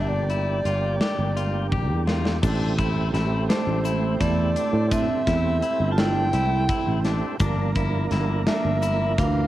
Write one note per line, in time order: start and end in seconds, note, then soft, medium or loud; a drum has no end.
0.00 0.61 G1 medium
0.00 2.38 G3 soft
0.00 2.39 A#3 medium
0.00 0.24 D4 medium
0.00 2.39 D4 soft
0.00 2.40 G4 medium
0.00 0.10 E5 medium
0.09 1.72 D5 medium
0.30 0.59 E4 medium
0.30 closed hi-hat medium
0.65 0.98 G1 medium
0.65 0.95 F4 medium
0.65 closed hi-hat medium
1.01 1.30 G4 medium
1.01 snare loud
1.01 closed hi-hat medium
1.19 1.90 G1 medium
1.36 1.66 F4 medium
1.36 closed hi-hat medium
1.72 2.01 G4 medium
1.72 kick medium
1.72 high tom medium
1.90 2.40 E2 medium
2.07 2.37 F4 medium
2.07 snare medium
2.25 snare medium
2.42 3.10 A1 loud
2.42 7.36 A3 medium
2.42 7.36 C4 medium
2.42 2.72 D4 medium
2.42 7.37 E4 medium
2.42 7.37 G4 medium
2.42 kick loud
2.42 crash medium
2.42 shaker medium
2.78 3.08 E4 medium
2.78 kick medium
2.78 closed hi-hat medium
3.14 3.47 A1 medium
3.14 3.43 E4 medium
3.14 snare soft
3.14 closed hi-hat medium
3.49 4.17 A3 medium
3.49 3.79 D4 medium
3.49 4.23 C5 medium
3.49 snare loud
3.49 closed hi-hat medium
3.67 4.17 A1 medium
3.85 4.14 E4 medium
3.85 closed hi-hat medium
3.85 shaker medium
4.20 4.54 E2 medium
4.20 4.92 A3 medium
4.20 4.50 E4 medium
4.20 4.93 D5 medium
4.20 kick medium
4.20 closed hi-hat medium
4.20 shaker soft
4.56 4.86 D4 medium
4.56 closed hi-hat medium
4.73 5.07 A2 medium
4.91 5.92 C4 medium
4.91 5.21 D4 medium
4.91 5.91 E5 loud
4.91 kick loud
4.91 closed hi-hat medium
4.91 shaker medium
5.27 5.61 E2 medium
5.27 5.57 E4 medium
5.27 kick medium
5.27 snare soft
5.27 closed hi-hat medium
5.62 5.92 E4 medium
5.62 closed hi-hat medium
5.80 6.30 G1 medium
5.91 5.98 F4 medium
5.91 6.01 A5 medium
5.98 6.28 D4 medium
5.98 7.05 E4 medium
5.98 7.06 G5 loud
5.98 snare loud
5.98 closed hi-hat medium
6.33 6.67 C2 medium
6.33 6.63 E4 medium
6.33 closed hi-hat medium
6.69 6.99 E4 medium
6.69 kick loud
6.69 closed hi-hat medium
6.69 shaker soft
6.87 7.20 A1 medium
7.05 7.34 D4 medium
7.05 snare soft
7.05 closed hi-hat medium
7.39 8.07 G1 loud
7.39 9.47 F3 medium
7.39 9.47 A#3 medium
7.39 9.47 D4 medium
7.39 7.70 D4 medium
7.39 9.47 A#4 medium
7.39 kick loud
7.39 closed hi-hat medium
7.39 shaker soft
7.75 8.05 E4 medium
7.75 kick medium
7.75 closed hi-hat medium
8.11 8.45 G1 medium
8.11 8.41 E4 medium
8.11 snare soft
8.11 closed hi-hat medium
8.47 9.15 A#3 medium
8.47 8.77 D4 medium
8.47 9.20 E5 medium
8.47 snare loud
8.47 closed hi-hat medium
8.65 9.15 G1 medium
8.82 9.12 E4 medium
8.82 closed hi-hat medium
8.82 shaker medium
9.18 9.47 D2 medium
9.18 9.47 E3 medium
9.18 9.47 D4 medium
9.18 9.47 F5 medium
9.18 kick loud
9.18 closed hi-hat medium
9.18 shaker soft